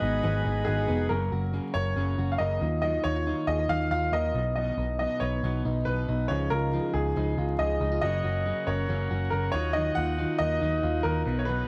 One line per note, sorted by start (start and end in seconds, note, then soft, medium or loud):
0.00 0.20 G#1 medium
0.00 1.10 G#2 medium
0.00 0.22 F#3 soft
0.00 0.87 B3 medium
0.00 0.22 B3 soft
0.00 0.23 D#4 soft
0.00 0.44 D#4 medium
0.00 1.06 F#4 medium
0.00 1.07 G#4 medium
0.00 1.09 G#4 medium
0.00 1.07 B4 medium
0.00 0.84 D#5 medium
0.00 1.09 F#5 medium
0.00 1.09 B5 medium
0.22 0.41 G#1 loud
0.22 0.45 G#2 medium
0.22 0.45 D#3 medium
0.22 0.45 F#3 medium
0.22 0.44 B3 medium
0.22 0.43 D#4 medium
0.22 0.66 G#4 medium
0.44 0.63 G#1 loud
0.44 0.65 F#3 medium
0.44 0.66 B3 medium
0.44 0.66 D#4 medium
0.44 1.15 D#4 medium
0.65 0.85 G#1 medium
0.65 0.88 D#3 medium
0.65 0.88 F#3 medium
0.65 0.87 B3 medium
0.65 0.86 D#4 medium
0.65 1.10 G#4 medium
0.65 1.14 G#4 medium
0.87 1.07 F1 medium
0.87 1.08 F#3 medium
0.87 1.09 B3 medium
0.87 1.14 B3 medium
0.87 1.10 D#4 medium
1.09 1.28 F#1 medium
1.09 1.31 F#2 medium
1.09 1.31 C#3 medium
1.09 1.31 F#3 medium
1.09 3.19 F#3 medium
1.09 1.31 A#3 medium
1.09 1.29 C#4 medium
1.09 1.71 A#4 medium
1.30 1.59 F#1 medium
1.30 1.52 F#3 soft
1.30 1.53 A#3 soft
1.30 1.53 C#4 soft
1.30 2.18 F#4 medium
1.53 1.75 C#3 medium
1.53 1.75 F#3 medium
1.53 1.74 A#3 medium
1.53 1.95 C#4 medium
1.53 1.73 C#4 medium
1.74 1.93 F#1 medium
1.74 1.96 F#3 soft
1.74 1.96 A#3 soft
1.74 1.96 C#4 soft
1.74 2.39 A#4 medium
1.74 2.34 C#5 medium
1.96 2.14 F#1 medium
1.96 2.18 F#2 medium
1.96 2.18 C#3 medium
1.96 2.18 F#3 medium
1.96 2.17 A#3 medium
1.96 2.66 C#4 medium
1.96 2.16 C#4 medium
2.17 2.36 F#1 medium
2.17 2.39 F#3 soft
2.17 2.39 A#3 soft
2.17 2.40 C#4 soft
2.17 3.05 F#4 medium
2.32 2.39 F5 medium
2.38 2.58 F#1 medium
2.38 2.61 C#3 medium
2.38 2.62 F#3 medium
2.38 2.61 A#3 soft
2.38 2.61 C#4 medium
2.38 2.66 A#4 medium
2.38 2.80 D#5 medium
2.61 2.97 D#2 medium
2.61 2.83 D#3 medium
2.61 2.82 F#3 soft
2.61 2.82 A#3 soft
2.61 2.83 F4 medium
2.82 3.05 D#3 medium
2.82 6.30 D#3 medium
2.82 3.05 F#3 medium
2.82 3.04 A#3 medium
2.82 3.03 F4 medium
2.82 3.05 D#5 medium
3.04 3.32 D#2 medium
3.04 3.25 F#3 soft
3.04 3.26 A#3 soft
3.04 3.16 D#4 medium
3.04 3.26 F4 soft
3.04 3.45 C#5 medium
3.16 3.91 F4 medium
3.26 3.48 D#3 medium
3.26 3.48 F#3 medium
3.26 3.47 A#3 medium
3.26 3.70 D#4 medium
3.26 3.46 F4 medium
3.47 3.66 D#2 medium
3.47 3.68 F#3 soft
3.47 3.69 A#3 soft
3.47 3.69 F4 medium
3.47 3.59 G#4 medium
3.47 3.70 D#5 medium
3.59 4.12 A#4 medium
3.69 3.87 D#2 medium
3.69 3.91 D#3 medium
3.69 3.92 F#3 medium
3.69 3.91 A#3 medium
3.69 4.79 D#4 medium
3.69 3.90 F4 medium
3.69 3.89 F5 loud
3.91 4.09 D#2 medium
3.91 4.12 F#3 soft
3.91 4.13 A#3 soft
3.91 4.39 F4 medium
3.91 4.14 F5 medium
4.12 4.31 D#2 medium
4.12 4.35 D#3 soft
4.12 4.35 F#3 soft
4.12 4.35 A#3 medium
4.12 4.35 F4 medium
4.12 4.39 A#4 medium
4.12 4.54 D#5 medium
4.34 4.70 B1 medium
4.34 4.56 B2 medium
4.34 4.56 F#3 soft
4.34 4.56 B3 soft
4.34 4.56 D#4 soft
4.56 4.78 B2 medium
4.56 6.30 B2 medium
4.56 4.79 F#3 medium
4.56 4.78 B3 medium
4.56 4.77 D#4 medium
4.56 4.96 D#5 medium
4.77 5.05 B1 medium
4.77 4.99 F#3 soft
4.77 5.00 B3 soft
4.77 5.00 D#4 medium
4.77 5.65 D#4 medium
4.99 5.21 B2 medium
4.99 5.22 F#3 medium
4.99 5.42 B3 medium
4.99 5.21 B3 medium
4.99 5.20 D#4 medium
4.99 5.22 D#5 medium
5.20 5.39 B1 medium
5.20 5.43 F#3 soft
5.20 5.43 B3 soft
5.20 5.43 D#4 soft
5.20 5.86 B4 medium
5.20 5.61 C#5 medium
5.43 5.61 B1 medium
5.43 5.65 B2 medium
5.43 5.65 F#3 medium
5.43 6.34 B3 medium
5.43 5.65 B3 medium
5.43 5.64 D#4 medium
5.65 5.83 B1 medium
5.65 5.86 F#3 soft
5.65 5.87 B3 soft
5.65 5.87 D#4 soft
5.65 6.07 D#4 medium
5.85 6.04 B1 medium
5.85 6.08 B2 soft
5.85 6.09 F#3 medium
5.85 6.08 B3 medium
5.85 6.07 D#4 medium
5.85 6.30 B4 medium
5.85 6.34 B4 medium
6.08 6.26 B1 medium
6.08 6.30 F#3 soft
6.08 6.30 B3 medium
6.08 6.30 D#4 soft
6.08 6.34 D#4 medium
6.28 6.48 C#2 medium
6.28 6.52 C#3 medium
6.28 8.03 C#3 medium
6.28 6.52 F3 medium
6.28 6.52 G#3 medium
6.28 6.50 D#4 medium
6.28 6.51 C#5 medium
6.50 6.78 C#2 medium
6.50 6.72 F3 soft
6.50 6.73 G#3 medium
6.50 6.73 D#4 soft
6.50 7.37 F4 medium
6.50 6.91 A#4 medium
6.73 6.95 C#3 medium
6.73 6.95 F3 medium
6.73 6.94 G#3 medium
6.73 7.16 D#4 medium
6.73 6.93 D#4 medium
6.94 7.12 C#2 medium
6.94 7.15 F3 soft
6.94 7.16 G#3 soft
6.94 7.16 D#4 soft
6.94 7.61 G#4 medium
6.94 7.58 G#4 medium
7.16 7.34 C#2 medium
7.16 7.38 C#3 medium
7.16 7.38 F3 medium
7.16 7.37 G#3 medium
7.16 7.80 D#4 medium
7.16 7.36 D#4 medium
7.37 7.55 C#2 medium
7.37 7.59 F3 soft
7.37 7.59 G#3 soft
7.37 7.59 D#4 soft
7.37 7.81 F4 medium
7.59 7.77 C#2 medium
7.59 7.81 C#3 soft
7.59 7.81 F3 medium
7.59 7.80 G#3 medium
7.59 7.79 D#4 medium
7.59 8.07 G#4 medium
7.59 7.99 D#5 medium
7.80 7.98 C#2 medium
7.80 8.02 F3 soft
7.80 8.02 G#3 soft
7.80 8.02 D#4 soft
7.80 7.92 D#4 medium
7.92 8.07 F4 medium
8.02 8.20 F#1 medium
8.02 8.24 F#2 medium
8.02 8.24 C#3 medium
8.02 8.24 F#3 medium
8.02 10.00 F#3 medium
8.02 8.24 A#3 medium
8.02 8.23 C#4 medium
8.02 9.50 F#4 medium
8.02 9.51 A#4 medium
8.02 9.51 C#5 medium
8.02 8.69 D#5 medium
8.24 8.51 F#1 medium
8.24 8.44 F#3 soft
8.24 8.45 A#3 soft
8.24 8.46 C#4 soft
8.24 9.10 F#4 medium
8.45 8.67 C#3 medium
8.45 8.67 F#3 medium
8.45 8.67 A#3 medium
8.45 8.88 C#4 medium
8.45 8.66 C#4 medium
8.67 8.85 F#1 loud
8.67 8.88 F#3 soft
8.67 8.88 A#3 soft
8.67 8.89 C#4 soft
8.67 9.31 A#4 medium
8.67 9.07 C#5 medium
8.88 9.07 F#1 medium
8.88 9.10 F#2 medium
8.88 9.11 C#3 medium
8.88 9.10 F#3 medium
8.88 9.10 A#3 medium
8.88 9.58 C#4 medium
8.88 9.09 C#4 medium
9.10 9.28 F#1 medium
9.10 9.30 F#3 soft
9.10 9.31 A#3 soft
9.10 9.32 C#4 medium
9.10 9.96 F#4 medium
9.30 9.50 F#1 medium
9.30 9.53 C#3 soft
9.30 9.54 F#3 medium
9.30 9.53 A#3 medium
9.30 9.53 C#4 medium
9.30 9.54 A#4 medium
9.30 9.58 A#4 medium
9.52 9.89 D#2 medium
9.52 9.75 D#3 medium
9.52 9.75 F#3 soft
9.52 9.75 A#3 soft
9.52 11.22 D#4 medium
9.52 9.75 F4 medium
9.52 11.23 F#4 medium
9.52 9.75 C#5 medium
9.52 11.23 D#5 medium
9.73 9.97 D#3 medium
9.73 11.68 D#3 medium
9.73 9.97 F#3 medium
9.73 9.97 A#3 medium
9.73 9.96 F4 medium
9.73 9.94 D#5 medium
9.95 10.24 D#2 medium
9.95 10.18 F#3 soft
9.95 10.18 A#3 soft
9.95 10.18 F4 soft
9.95 10.81 F4 medium
9.95 10.40 F#5 loud
10.18 10.40 D#3 medium
10.18 10.40 F#3 medium
10.18 10.40 A#3 medium
10.18 10.61 D#4 medium
10.18 10.39 F4 medium
10.38 10.58 D#2 medium
10.38 10.61 F#3 soft
10.38 10.61 A#3 soft
10.38 10.62 F4 medium
10.38 11.03 A#4 medium
10.38 11.06 D#5 loud
10.61 10.79 D#2 medium
10.61 10.83 D#3 medium
10.61 10.83 F#3 medium
10.61 10.82 A#3 medium
10.61 11.68 D#4 medium
10.61 10.81 F4 medium
10.83 11.01 D#2 medium
10.83 11.04 F#3 soft
10.83 11.05 A#3 soft
10.83 11.04 F4 medium
10.83 11.30 F4 medium
11.03 11.22 D#2 medium
11.03 11.26 D#3 soft
11.03 11.26 F#3 medium
11.03 11.27 A#3 medium
11.03 11.26 F4 soft
11.03 11.41 A#4 medium
11.03 11.30 A#4 medium
11.25 11.62 B1 medium
11.25 11.46 B2 medium
11.25 11.48 F#3 soft
11.25 11.48 B3 soft
11.25 11.68 D#4 medium
11.25 11.48 D#4 soft
11.25 11.68 F#4 medium
11.25 11.68 B4 medium
11.39 11.47 C#5 medium
11.45 11.68 B2 medium
11.45 11.68 F#3 medium
11.45 11.68 B3 medium
11.45 11.68 B4 medium
11.49 11.68 D#4 medium